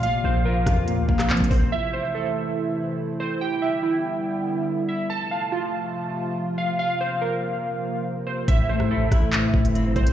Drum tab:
HH |x-----------------x-----x--------x--x-x-x-o-----|------------------------------------------------|------------------------------------------------|------------------------------------------------|
CP |---------------------------------x--x-----------|------------------------------------------------|------------------------------------------------|------------------------------------------------|
SD |------------------r--------------r--------------|------------------------------------------------|------------------------------------------------|------------------------------------------------|
BD |------------------o-----------o--------o--o-----|------------------------------------------------|------------------------------------------------|------------------------------------------------|

HH |------------------------------------------------|x-----------------x-----x--------x--x-----x--x--|
CP |------------------------------------------------|------------------------x-----------------------|
SD |------------------------------------------------|---------r--------r-----------------------------|
BD |------------------------------------------------|o-----------------o-----------o-----------o-----|